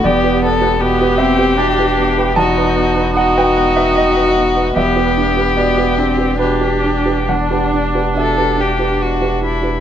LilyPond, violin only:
\new Staff \with { instrumentName = "Violin" } { \time 3/4 \key e \minor \tempo 4 = 75 g'8 a'8 g'2 | fis'4 fis'2 | g'2 g'4 | d'4 a'8 g'8 fis'8 e'8 | }